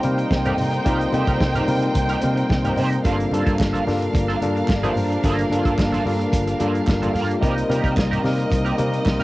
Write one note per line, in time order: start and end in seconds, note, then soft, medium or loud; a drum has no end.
0.00 3.00 C3 medium
0.00 0.03 G3 loud
0.00 0.31 G3 loud
0.00 0.04 A#3 medium
0.00 0.83 A#3 medium
0.00 0.32 A#3 medium
0.00 0.04 C4 loud
0.00 0.04 D#4 medium
0.00 3.00 D#4 medium
0.00 3.00 D#4 loud
0.00 0.05 A#4 loud
0.00 3.00 C5 loud
0.00 3.00 G5 loud
0.00 muted clean electric guitar stroke soft
0.00 closed hi-hat medium
0.04 0.23 C3 medium
0.04 0.32 C4 medium
0.04 0.32 D#4 medium
0.04 0.32 A#4 loud
0.04 high conga medium
0.18 muted clean electric guitar stroke soft
0.18 closed hi-hat soft
0.31 0.50 C2 loud
0.31 muted clean electric guitar stroke soft
0.31 kick loud
0.31 snare loud
0.31 high conga medium
0.45 0.73 G3 medium
0.45 0.73 A#3 medium
0.45 0.73 C4 medium
0.45 0.74 D#4 medium
0.45 0.57 D#4 medium
0.45 0.58 G4 medium
0.45 0.74 A4 medium
0.45 0.59 A#4 medium
0.45 closed hi-hat soft
0.45 low conga medium
0.58 0.78 C3 loud
0.58 muted clean electric guitar stroke soft
0.58 open hi-hat medium
0.58 low conga medium
0.73 muted clean electric guitar stroke soft
0.73 closed hi-hat soft
0.85 1.05 C2 loud
0.85 1.04 G3 loud
0.85 1.04 A#3 medium
0.85 1.05 C4 medium
0.85 3.03 C4 medium
0.85 1.07 D#4 medium
0.85 1.05 D#4 loud
0.85 1.05 F4 loud
0.85 1.00 G4 medium
0.85 0.99 A#4 medium
0.85 kick loud
0.85 closed hi-hat medium
0.85 muted conga soft
1.00 muted clean electric guitar stroke soft
1.00 closed hi-hat soft
1.12 1.23 C3 loud
1.12 1.50 G3 medium
1.12 1.51 A#3 medium
1.12 1.51 C4 medium
1.12 1.51 D#4 medium
1.12 1.28 D#4 medium
1.12 1.28 G4 medium
1.12 1.51 A4 loud
1.12 1.28 C5 medium
1.12 closed hi-hat medium
1.12 high conga medium
1.27 1.37 C3 medium
1.27 1.40 D#4 medium
1.27 1.40 G4 medium
1.27 1.41 A#4 medium
1.27 kick medium
1.27 closed hi-hat soft
1.41 1.60 C2 loud
1.41 muted clean electric guitar stroke soft
1.41 kick loud
1.41 snare loud
1.55 1.67 D#4 medium
1.55 1.68 G4 medium
1.55 1.68 A#4 medium
1.55 closed hi-hat soft
1.55 low conga medium
1.67 1.87 C3 loud
1.67 2.05 G3 loud
1.67 2.05 A#3 medium
1.67 2.06 C4 medium
1.67 2.06 D#4 medium
1.67 2.06 A#4 loud
1.67 muted clean electric guitar stroke soft
1.67 open hi-hat medium
1.67 high conga medium
1.82 muted clean electric guitar stroke soft
1.82 closed hi-hat soft
1.94 2.15 C2 medium
1.94 muted clean electric guitar stroke soft
1.94 kick loud
1.94 closed hi-hat medium
1.94 muted conga soft
1.94 high conga medium
2.09 2.22 D#4 medium
2.09 2.23 G4 medium
2.09 2.23 A#4 medium
2.09 closed hi-hat soft
2.21 2.42 C3 medium
2.21 2.50 G3 medium
2.21 2.51 A#3 medium
2.21 2.51 C4 medium
2.21 2.51 D#4 medium
2.21 2.51 A#4 loud
2.21 muted clean electric guitar stroke soft
2.21 closed hi-hat medium
2.21 muted conga soft
2.21 high conga medium
2.37 muted clean electric guitar stroke soft
2.37 closed hi-hat soft
2.49 2.69 C2 loud
2.49 muted clean electric guitar stroke soft
2.49 kick loud
2.49 snare loud
2.49 high conga medium
2.64 2.92 G3 medium
2.64 2.92 A#3 medium
2.64 2.92 C4 medium
2.64 2.93 D#4 medium
2.64 2.76 D#4 medium
2.64 2.77 G4 medium
2.64 2.78 A#4 medium
2.64 2.93 A#4 medium
2.64 closed hi-hat soft
2.64 low conga medium
2.76 2.97 C3 loud
2.76 2.98 D#4 medium
2.76 2.91 G4 loud
2.76 2.91 C5 loud
2.76 open hi-hat medium
2.76 muted conga soft
2.76 low conga medium
2.92 muted clean electric guitar stroke medium
2.92 closed hi-hat soft
3.04 3.24 G1 loud
3.04 3.24 G3 loud
3.04 7.39 G3 medium
3.04 3.26 A#3 medium
3.04 3.24 A#3 medium
3.04 7.39 A#3 medium
3.04 7.38 D4 medium
3.04 3.24 D4 medium
3.04 3.19 F4 medium
3.04 3.24 F4 medium
3.04 7.39 F4 medium
3.04 3.18 A4 medium
3.04 3.24 A4 loud
3.04 7.38 A#4 medium
3.04 7.38 F5 medium
3.04 5.22 A5 medium
3.04 kick loud
3.04 closed hi-hat loud
3.04 muted conga soft
3.19 muted clean electric guitar stroke soft
3.19 closed hi-hat soft
3.31 3.43 G2 loud
3.31 3.70 G3 medium
3.31 3.46 A#3 medium
3.31 3.70 A#3 medium
3.31 3.70 D4 medium
3.31 3.45 F4 medium
3.31 3.70 F4 medium
3.31 3.45 A4 medium
3.31 3.71 A4 loud
3.31 closed hi-hat medium
3.31 high conga medium
3.46 3.56 G2 medium
3.46 3.57 A#3 medium
3.46 3.58 F4 medium
3.46 3.59 A4 medium
3.46 kick loud
3.46 closed hi-hat soft
3.58 3.79 G1 medium
3.58 muted clean electric guitar stroke soft
3.58 kick loud
3.58 snare loud
3.58 clap loud
3.73 3.85 A#3 medium
3.73 3.86 F4 medium
3.73 3.86 A4 medium
3.73 closed hi-hat soft
3.73 low conga medium
3.87 4.06 G2 loud
3.87 4.24 G3 loud
3.87 4.24 A#3 medium
3.87 4.25 D4 medium
3.87 4.25 F4 medium
3.87 4.25 A4 loud
3.87 muted clean electric guitar stroke soft
3.87 snare soft
3.87 open hi-hat medium
3.87 high conga medium
4.01 muted clean electric guitar stroke soft
4.01 closed hi-hat soft
4.13 4.34 G1 loud
4.13 muted clean electric guitar stroke soft
4.13 kick loud
4.13 closed hi-hat loud
4.13 muted conga soft
4.13 high conga medium
4.28 4.40 A#3 medium
4.28 4.41 F4 medium
4.28 4.41 A4 medium
4.28 closed hi-hat soft
4.41 4.61 G2 medium
4.41 4.69 G3 medium
4.41 4.70 A#3 medium
4.41 4.70 D4 loud
4.41 4.70 F4 medium
4.41 4.70 A4 loud
4.41 muted clean electric guitar stroke soft
4.41 closed hi-hat medium
4.41 muted conga soft
4.41 high conga medium
4.56 muted clean electric guitar stroke soft
4.56 closed hi-hat soft
4.68 4.88 G1 loud
4.68 muted clean electric guitar stroke soft
4.68 kick loud
4.68 snare loud
4.68 clap loud
4.68 high conga medium
4.83 5.11 G3 medium
4.83 5.11 A#3 medium
4.83 4.95 A#3 medium
4.83 5.11 D4 medium
4.83 4.95 F4 medium
4.83 5.12 F4 medium
4.83 4.95 A4 loud
4.83 5.12 C5 loud
4.83 closed hi-hat soft
4.83 low conga medium
4.96 5.16 G2 medium
4.96 muted clean electric guitar stroke soft
4.96 open hi-hat medium
4.96 muted conga soft
4.96 low conga medium
5.10 muted clean electric guitar stroke soft
5.10 closed hi-hat soft
5.23 5.43 G1 loud
5.23 5.43 G3 loud
5.23 5.45 A#3 loud
5.23 5.43 A#3 medium
5.23 5.43 D4 medium
5.23 5.39 F4 loud
5.23 5.43 F4 loud
5.23 7.40 G4 medium
5.23 5.37 A4 loud
5.23 5.43 A4 loud
5.23 kick loud
5.23 closed hi-hat medium
5.23 muted conga soft
5.39 muted clean electric guitar stroke soft
5.39 closed hi-hat soft
5.50 5.61 G2 loud
5.50 5.88 G3 medium
5.50 5.66 A#3 medium
5.50 5.89 A#3 medium
5.50 5.89 D4 medium
5.50 5.65 F4 medium
5.50 5.89 F4 medium
5.50 5.89 A4 loud
5.50 5.65 A#4 medium
5.50 closed hi-hat medium
5.50 high conga medium
5.65 5.74 G2 loud
5.65 5.77 A#3 medium
5.65 5.77 F4 medium
5.65 5.78 A4 medium
5.65 kick loud
5.65 closed hi-hat soft
5.78 5.98 G1 medium
5.78 kick loud
5.78 snare loud
5.78 clap loud
5.78 muted conga soft
5.92 6.04 A#3 medium
5.92 6.05 F4 medium
5.92 6.06 A4 medium
5.92 closed hi-hat medium
5.92 low conga medium
6.05 6.25 G2 medium
6.05 6.43 G3 loud
6.05 6.43 A#3 medium
6.05 6.44 D4 medium
6.05 6.44 F4 medium
6.05 6.44 A4 loud
6.05 muted clean electric guitar stroke soft
6.05 open hi-hat medium
6.05 high conga medium
6.19 muted clean electric guitar stroke medium
6.19 closed hi-hat soft
6.32 6.52 G1 loud
6.32 kick loud
6.32 closed hi-hat loud
6.32 high conga medium
6.47 muted clean electric guitar stroke soft
6.47 closed hi-hat medium
6.59 6.80 G2 loud
6.59 6.88 G3 loud
6.59 6.81 A#3 medium
6.59 6.88 A#3 medium
6.59 6.88 D4 medium
6.59 6.75 F4 medium
6.59 6.89 F4 medium
6.59 6.73 A4 medium
6.59 6.88 A4 loud
6.59 closed hi-hat medium
6.59 high conga medium
6.74 muted clean electric guitar stroke soft
6.74 closed hi-hat soft
6.87 7.07 G1 medium
6.87 muted clean electric guitar stroke soft
6.87 kick loud
6.87 snare loud
6.87 clap loud
6.87 high conga medium
7.02 7.30 G3 medium
7.02 7.30 A#3 medium
7.02 7.12 A#3 medium
7.02 7.30 D4 medium
7.02 7.13 F4 medium
7.02 7.31 F4 medium
7.02 7.15 A4 medium
7.02 7.31 A4 loud
7.02 closed hi-hat soft
7.02 low conga medium
7.14 7.34 G2 loud
7.14 7.35 A#3 medium
7.14 7.29 F4 medium
7.14 7.29 A#4 loud
7.14 open hi-hat medium
7.14 low conga medium
7.29 muted clean electric guitar stroke soft
7.29 closed hi-hat soft
7.41 7.62 C2 loud
7.41 9.24 C3 medium
7.41 7.61 G3 loud
7.41 7.61 A#3 medium
7.41 9.24 A#3 medium
7.41 9.24 C4 medium
7.41 7.61 C4 medium
7.41 7.63 D#4 loud
7.41 7.61 D#4 loud
7.41 9.24 D#4 medium
7.41 7.56 G4 loud
7.41 9.24 A#4 medium
7.41 7.55 A#4 loud
7.41 7.62 A#4 loud
7.41 9.24 D#5 loud
7.41 kick loud
7.41 closed hi-hat medium
7.41 muted conga soft
7.57 muted clean electric guitar stroke soft
7.57 closed hi-hat soft
7.69 7.80 C3 loud
7.69 8.07 G3 medium
7.69 8.07 A#3 medium
7.69 8.07 C4 medium
7.69 7.84 D#4 medium
7.69 8.07 D#4 medium
7.69 7.84 G4 medium
7.69 8.07 A#4 loud
7.69 7.83 A#4 medium
7.69 closed hi-hat medium
7.69 high conga medium
7.84 7.99 C3 loud
7.84 7.95 D#4 medium
7.84 7.96 G4 medium
7.84 7.97 A#4 medium
7.84 kick medium
7.84 closed hi-hat soft
7.96 8.16 C2 loud
7.96 muted clean electric guitar stroke soft
7.96 kick loud
7.96 snare loud
7.96 clap loud
7.96 muted conga soft
8.11 8.24 D#4 medium
8.11 8.24 G4 medium
8.11 8.25 A#4 medium
8.11 closed hi-hat soft
8.11 low conga medium
8.24 8.43 C3 loud
8.24 8.62 G3 loud
8.24 8.62 A#3 loud
8.24 8.62 C4 medium
8.24 8.62 D#4 medium
8.24 8.63 A#4 loud
8.24 muted clean electric guitar stroke soft
8.24 snare soft
8.24 open hi-hat medium
8.24 high conga medium
8.38 muted clean electric guitar stroke medium
8.38 closed hi-hat soft
8.51 8.71 C2 loud
8.51 muted clean electric guitar stroke soft
8.51 kick loud
8.51 closed hi-hat loud
8.51 muted conga soft
8.51 high conga medium
8.65 8.77 D#4 medium
8.65 8.78 G4 medium
8.65 8.78 A#4 medium
8.65 closed hi-hat soft
8.78 8.98 C3 medium
8.78 9.06 G3 loud
8.78 9.06 A#3 loud
8.78 9.07 C4 medium
8.78 9.07 D#4 medium
8.78 9.07 A#4 loud
8.78 closed hi-hat medium
8.78 muted conga soft
8.78 high conga medium
8.92 muted clean electric guitar stroke soft
8.92 closed hi-hat soft
9.05 9.24 C2 loud
9.05 muted clean electric guitar stroke soft
9.05 kick loud
9.05 snare loud
9.05 clap medium
9.05 high conga medium
9.19 9.24 G3 medium
9.19 9.24 A#3 medium
9.19 9.24 C4 medium
9.19 9.24 D#4 medium
9.19 9.24 G4 medium
9.19 9.24 A#4 medium
9.19 closed hi-hat soft